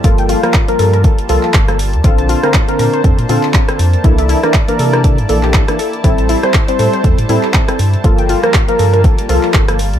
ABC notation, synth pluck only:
X:1
M:4/4
L:1/16
Q:"Swing 16ths" 1/4=120
K:Gdor
V:1 name="Synth pluck"
F g F z3 A B z2 F z4 z | F a F z3 B c z2 F z4 z | E e E z3 A B z2 A G A z A z | E a E z3 A c z2 E z4 z |
F g F z3 A B z2 F z4 z |]